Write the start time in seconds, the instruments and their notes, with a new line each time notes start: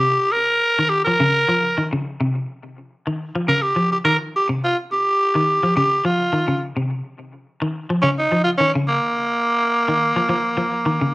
Already playing: clean electric guitar C3, tenor saxophone G4
0.32 tenor saxophone A#4
0.79 clean electric guitar D#3
0.89 tenor saxophone G4
1.05 clean electric guitar F3, tenor saxophone A#4
1.20 clean electric guitar C#3
1.49 clean electric guitar F3
1.78 clean electric guitar D#3
1.93 clean electric guitar C#3
2.21 clean electric guitar C3
3.07 clean electric guitar D#3
3.35 clean electric guitar F3
3.48 clean electric guitar C#3, tenor saxophone A#4
3.62 tenor saxophone G4
3.76 clean electric guitar F3
3.92 tenor saxophone G4
4.05 clean electric guitar D#3, tenor saxophone A#4
4.36 tenor saxophone G4
4.49 clean electric guitar C3
4.64 tenor saxophone F4
4.92 tenor saxophone G4
5.35 clean electric guitar D#3
5.63 clean electric guitar F3
5.76 clean electric guitar C#3, tenor saxophone G4
6.05 clean electric guitar F3, tenor saxophone F4
6.33 clean electric guitar D#3
6.48 clean electric guitar C#3
6.76 clean electric guitar C3
7.62 clean electric guitar D#3
7.90 clean electric guitar F3
8.02 clean electric guitar C#3, tenor saxophone C#4
8.19 tenor saxophone D#4
8.32 clean electric guitar F3
8.44 tenor saxophone F4
8.58 clean electric guitar D#3, tenor saxophone C#4
8.75 clean electric guitar C#3
8.88 tenor saxophone A#3
9.89 clean electric guitar D#3
10.16 clean electric guitar F3
10.29 clean electric guitar F3
10.58 clean electric guitar F3
10.86 clean electric guitar D#3
11.01 clean electric guitar C#3